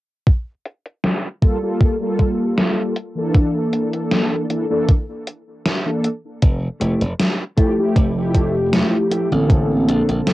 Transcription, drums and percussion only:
0.27 kick, closed hi-hat
0.66 closed hi-hat
0.86 closed hi-hat
1.04 snare, closed hi-hat
1.42 kick, closed hi-hat
1.81 kick, closed hi-hat
2.19 kick, closed hi-hat
2.58 snare, closed hi-hat
2.96 closed hi-hat
3.35 kick, closed hi-hat
3.73 closed hi-hat
3.93 closed hi-hat
4.11 snare, closed hi-hat
4.50 closed hi-hat
4.88 kick, closed hi-hat
5.27 closed hi-hat
5.65 snare, closed hi-hat
6.04 closed hi-hat
6.42 kick, closed hi-hat
6.81 closed hi-hat
7.01 closed hi-hat
7.20 snare, closed hi-hat
7.58 kick, closed hi-hat
7.96 kick, closed hi-hat
8.35 kick, closed hi-hat
8.73 snare, closed hi-hat
9.12 closed hi-hat
9.50 kick, closed hi-hat
9.89 closed hi-hat
10.09 closed hi-hat
10.27 snare, closed hi-hat

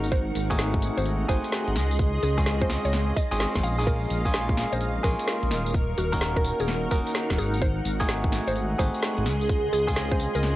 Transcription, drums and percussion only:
0.04 tambourine
0.12 kick, closed hi-hat
0.35 open hi-hat, tambourine
0.51 kick, closed hi-hat, tambourine
0.59 snare, tambourine
0.74 kick
0.82 open hi-hat, tambourine
0.98 tambourine
1.06 closed hi-hat, tambourine
1.29 kick, open hi-hat, tambourine
1.44 closed hi-hat, tambourine
1.52 snare, tambourine
1.68 closed hi-hat
1.76 snare, open hi-hat, tambourine
1.91 tambourine
1.99 kick, closed hi-hat, tambourine
2.23 open hi-hat, tambourine
2.38 kick, closed hi-hat, tambourine
2.46 snare, tambourine
2.62 kick, closed hi-hat
2.70 snare, open hi-hat, tambourine
2.85 tambourine
2.93 snare, closed hi-hat, tambourine
3.17 kick, open hi-hat, tambourine
3.32 closed hi-hat, tambourine
3.40 snare, tambourine
3.55 kick, snare, closed hi-hat
3.63 open hi-hat, tambourine
3.79 tambourine
3.87 kick, closed hi-hat, tambourine
4.10 open hi-hat, tambourine
4.26 kick, closed hi-hat, tambourine
4.34 snare, tambourine
4.49 kick
4.57 snare, open hi-hat, tambourine
4.73 tambourine
4.81 closed hi-hat, tambourine
5.04 kick, open hi-hat, tambourine
5.19 closed hi-hat, tambourine
5.28 snare, tambourine
5.43 closed hi-hat
5.51 snare, open hi-hat, tambourine
5.66 tambourine
5.74 kick, closed hi-hat
5.98 open hi-hat, tambourine
6.13 kick, closed hi-hat, tambourine
6.21 snare, tambourine
6.37 kick
6.45 open hi-hat, tambourine
6.60 tambourine
6.68 snare, closed hi-hat, tambourine
6.91 kick, open hi-hat, tambourine
7.07 closed hi-hat, tambourine
7.15 snare, tambourine
7.30 kick, snare, closed hi-hat
7.38 open hi-hat, tambourine
7.54 tambourine
7.62 kick, closed hi-hat, tambourine
7.85 open hi-hat, tambourine
8.01 kick, closed hi-hat, tambourine
8.09 snare, tambourine
8.24 kick
8.32 snare, open hi-hat, tambourine
8.48 tambourine
8.56 closed hi-hat, tambourine
8.79 kick, open hi-hat, tambourine
8.94 closed hi-hat, tambourine
9.03 snare, tambourine
9.18 closed hi-hat
9.26 snare, open hi-hat, tambourine
9.41 tambourine
9.49 kick, closed hi-hat, tambourine
9.73 open hi-hat, tambourine
9.88 kick, closed hi-hat, tambourine
9.96 snare, tambourine
10.12 kick
10.20 open hi-hat, tambourine
10.35 tambourine
10.43 snare, closed hi-hat, tambourine

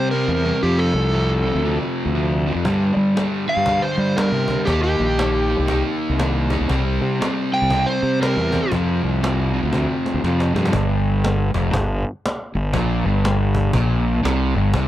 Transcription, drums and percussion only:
2.65 cajon bass
3.17 cajon slap
3.66 cajon bass
4.18 cajon slap
4.48 cajon bass
4.67 cajon bass
5.19 cajon slap
5.68 cajon bass
6.20 cajon slap
6.50 cajon bass
6.69 cajon bass
7.22 cajon slap
7.70 cajon bass
8.23 cajon slap
8.52 cajon bass
8.72 cajon bass
9.24 cajon slap
9.73 cajon bass, cajon slap
10.06 cajon slap
10.24 cajon slap
10.40 cajon slap
10.56 cajon slap
10.65 cajon slap
10.73 cajon bass
11.24 cajon slap
11.54 cajon bass
11.73 cajon bass
12.26 cajon slap
12.74 cajon bass
13.25 cajon slap
13.55 cajon bass
13.73 cajon bass
14.25 cajon slap
14.74 cajon bass

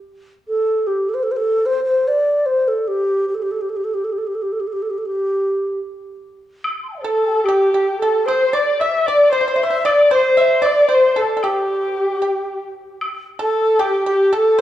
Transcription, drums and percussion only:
6.64 high woodblock
7.46 high woodblock
8.28 high woodblock
9.86 high woodblock
10.65 high woodblock
11.43 high woodblock
13.01 high woodblock
13.81 high woodblock

